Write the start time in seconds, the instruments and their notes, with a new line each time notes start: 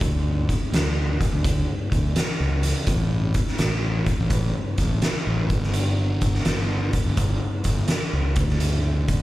0.01 fingered electric bass D2, kick, closed hi-hat
0.49 kick, closed hi-hat
0.72 fingered electric bass D2, snare, closed hi-hat
1.21 kick, closed hi-hat
1.32 fingered electric bass D2
1.44 kick, closed hi-hat
1.92 fingered electric bass D2, kick, closed hi-hat
2.16 snare, closed hi-hat
2.40 fingered electric bass C#2
2.63 closed hi-hat
2.87 fingered electric bass A1, kick, closed hi-hat
3.34 kick, closed hi-hat
3.47 snare
3.58 fingered electric bass A1, snare, closed hi-hat
4.06 kick, closed hi-hat
4.19 fingered electric bass A1
4.30 kick, closed hi-hat
4.78 fingered electric bass A1, kick, closed hi-hat
5.02 snare, closed hi-hat
5.27 fingered electric bass A1
5.50 fingered electric bass G1, kick, closed hi-hat
5.63 snare
5.74 closed hi-hat
6.21 kick, closed hi-hat
6.34 snare
6.45 fingered electric bass G1, snare, closed hi-hat
6.93 kick, closed hi-hat
7.06 fingered electric bass G1
7.17 kick, closed hi-hat
7.64 fingered electric bass G1, kick, closed hi-hat
7.88 snare, closed hi-hat
8.13 fingered electric bass C#2
8.36 fingered electric bass D2, kick, closed hi-hat
8.49 snare
8.60 closed hi-hat
9.08 kick, closed hi-hat